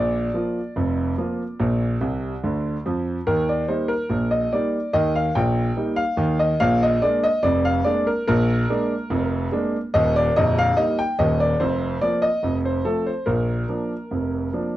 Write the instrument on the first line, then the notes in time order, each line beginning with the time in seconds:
grand piano
Already playing: A#1 A#2 D5
0.34 F3 A#3 F4
0.76 F1 F2
1.18 F3 A#3 F4
1.59 A#1 A#2
2.01 C2 C3
2.44 D2 D3
2.86 F2 F3
3.27 D#2 D#3 A#4
3.49 D5
3.69 G3 A#3 D#4 C5
3.89 A#4
4.10 A#1 A#2
4.31 D#5
4.53 G3 A#3 D#4 D5
4.93 D#2 D#3 D#5
5.15 F5
5.35 A#1 A#2 G5
5.77 G3 A#3 D#4
5.96 F5
6.17 D#2 D#3
6.39 D#5
6.60 A#1 A#2 F5
6.83 D#5
7.02 G#3 A#3 D4 D5
7.24 D#5
7.43 F1 F2 D5
7.65 F5
7.85 G#3 A#3 D4 D5
8.07 A#4
8.28 A#1 A#2 A#4
8.70 G#3 A#3 D4
9.10 F1 F2
9.52 G#3 A#3 D4
9.94 D#1 D#2 D#5
10.16 D5
10.36 A#0 A#1 D#5
10.58 F5
10.77 G3 A#3 D#4 D#5
10.99 G5
11.19 D#1 D#2 D#5
11.40 D5
11.60 F1 F2 C5
12.01 F3 A#3 D5
12.22 D#5
12.43 F1 F2
12.65 C5
12.85 F3 A3 C4 A4
13.06 C5
13.26 A#1 A#2 A#4
13.69 F3 A#3 D4
14.11 F1 F2
14.53 F3 A#3 D4